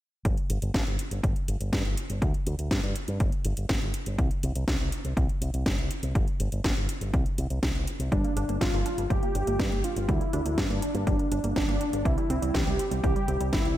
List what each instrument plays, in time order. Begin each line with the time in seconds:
0.25 fingered electric bass G1, kick, closed hi-hat
0.37 closed hi-hat
0.50 fingered electric bass G1, closed hi-hat
0.62 fingered electric bass G1, closed hi-hat
0.74 fingered electric bass G1, kick, snare, closed hi-hat
0.87 fingered electric bass G1, closed hi-hat
0.99 closed hi-hat
1.11 fingered electric bass G1, closed hi-hat
1.24 fingered electric bass G1, kick, closed hi-hat
1.36 closed hi-hat
1.48 fingered electric bass G1, closed hi-hat
1.60 fingered electric bass G1, closed hi-hat
1.73 fingered electric bass G2, kick, snare, closed hi-hat
1.85 fingered electric bass G1, closed hi-hat
1.97 closed hi-hat
2.10 fingered electric bass G1, closed hi-hat
2.22 fingered electric bass D2, kick, closed hi-hat
2.34 closed hi-hat
2.47 fingered electric bass D2, closed hi-hat
2.59 fingered electric bass D2, closed hi-hat
2.71 fingered electric bass G2, kick, snare, closed hi-hat
2.83 fingered electric bass G2, closed hi-hat
2.96 closed hi-hat
3.08 fingered electric bass G2, closed hi-hat
3.20 fingered electric bass G1, kick, closed hi-hat
3.32 closed hi-hat
3.45 fingered electric bass G1, closed hi-hat
3.57 fingered electric bass G1, closed hi-hat
3.69 fingered electric bass G1, kick, snare, closed hi-hat
3.82 fingered electric bass G1, closed hi-hat
3.94 closed hi-hat
4.06 fingered electric bass G1, closed hi-hat
4.18 fingered electric bass C2, kick, closed hi-hat
4.31 closed hi-hat
4.43 fingered electric bass C2, closed hi-hat
4.55 fingered electric bass C2, closed hi-hat
4.68 fingered electric bass C2, kick, snare, closed hi-hat
4.80 fingered electric bass C2, closed hi-hat
4.92 closed hi-hat
5.05 fingered electric bass C2, closed hi-hat
5.17 fingered electric bass C2, kick, closed hi-hat
5.29 closed hi-hat
5.41 fingered electric bass C2, closed hi-hat
5.54 fingered electric bass C2, closed hi-hat
5.66 fingered electric bass G1, kick, snare, closed hi-hat
5.78 fingered electric bass C2, closed hi-hat
5.91 closed hi-hat
6.03 fingered electric bass C2, closed hi-hat
6.15 fingered electric bass G1, kick, closed hi-hat
6.28 closed hi-hat
6.40 fingered electric bass G1, closed hi-hat
6.52 fingered electric bass G1, closed hi-hat
6.64 fingered electric bass G1, kick, snare, closed hi-hat
6.77 fingered electric bass G1, closed hi-hat
6.89 closed hi-hat
7.01 fingered electric bass G1, closed hi-hat
7.13 fingered electric bass C2, kick, closed hi-hat
7.26 closed hi-hat
7.38 fingered electric bass C2, closed hi-hat
7.50 fingered electric bass C2, closed hi-hat
7.63 fingered electric bass C2, kick, snare, closed hi-hat
7.75 fingered electric bass C2, closed hi-hat
7.87 closed hi-hat
7.99 fingered electric bass C2, closed hi-hat
8.12 fingered electric bass G1, synth arpeggio sound G3, analog synth lead D4, kick, closed hi-hat
8.24 synth arpeggio sound A#3, closed hi-hat
8.36 fingered electric bass G1, synth arpeggio sound D4, closed hi-hat
8.48 fingered electric bass G1, synth arpeggio sound A#3, closed hi-hat
8.61 fingered electric bass G1, synth arpeggio sound G3, analog synth lead F4, kick, snare, closed hi-hat
8.73 fingered electric bass G1, synth arpeggio sound A#3, closed hi-hat
8.86 synth arpeggio sound D4, closed hi-hat
8.98 fingered electric bass G1, synth arpeggio sound A#3, closed hi-hat
9.10 fingered electric bass G1, synth arpeggio sound G3, analog synth lead G4, kick, closed hi-hat
9.23 synth arpeggio sound A#3, closed hi-hat
9.35 fingered electric bass G1, synth arpeggio sound D4, closed hi-hat
9.47 fingered electric bass G1, synth arpeggio sound A#3, closed hi-hat
9.59 fingered electric bass G2, synth arpeggio sound G3, kick, snare, closed hi-hat
9.72 fingered electric bass G1, synth arpeggio sound A#3, closed hi-hat
9.84 synth arpeggio sound D4, analog synth lead F4, closed hi-hat
9.96 fingered electric bass G1, synth arpeggio sound A#3, closed hi-hat
10.09 fingered electric bass D2, synth arpeggio sound G3, analog synth lead E4, kick, closed hi-hat
10.21 synth arpeggio sound A#3, closed hi-hat
10.33 fingered electric bass D2, synth arpeggio sound D4, closed hi-hat
10.45 fingered electric bass D2, synth arpeggio sound A#3, closed hi-hat
10.58 fingered electric bass G2, synth arpeggio sound G3, analog synth lead D4, kick, snare, closed hi-hat
10.70 fingered electric bass G2, synth arpeggio sound A#3, closed hi-hat
10.82 synth arpeggio sound D4, closed hi-hat
10.94 fingered electric bass G2, synth arpeggio sound A#3, closed hi-hat
11.07 fingered electric bass G1, synth arpeggio sound G3, kick, closed hi-hat
11.19 synth arpeggio sound A#3, closed hi-hat
11.31 fingered electric bass G1, synth arpeggio sound D4, closed hi-hat
11.44 fingered electric bass G1, synth arpeggio sound A#3, closed hi-hat
11.56 fingered electric bass G1, synth arpeggio sound G3, analog synth lead D4, kick, snare, closed hi-hat
11.68 fingered electric bass G1, synth arpeggio sound A#3, closed hi-hat
11.81 synth arpeggio sound D4, closed hi-hat
11.93 fingered electric bass G1, synth arpeggio sound A#3, closed hi-hat
12.05 fingered electric bass C2, synth arpeggio sound E3, analog synth lead E4, kick, closed hi-hat
12.18 synth arpeggio sound G3, closed hi-hat
12.30 fingered electric bass C2, synth arpeggio sound C4, closed hi-hat
12.42 fingered electric bass C2, synth arpeggio sound G3, closed hi-hat
12.54 fingered electric bass C2, synth arpeggio sound E3, analog synth lead G4, kick, snare, closed hi-hat
12.66 fingered electric bass C2, synth arpeggio sound G3, closed hi-hat
12.79 synth arpeggio sound C4, closed hi-hat
12.91 fingered electric bass C2, synth arpeggio sound G3, closed hi-hat
13.04 fingered electric bass C2, synth arpeggio sound E3, analog synth lead G4, kick, closed hi-hat
13.16 synth arpeggio sound G3, closed hi-hat
13.28 fingered electric bass C2, synth arpeggio sound C4, closed hi-hat
13.40 fingered electric bass C2, synth arpeggio sound G3, closed hi-hat
13.53 fingered electric bass G1, synth arpeggio sound E3, analog synth lead E4, kick, snare, closed hi-hat
13.65 fingered electric bass C2, synth arpeggio sound G3, closed hi-hat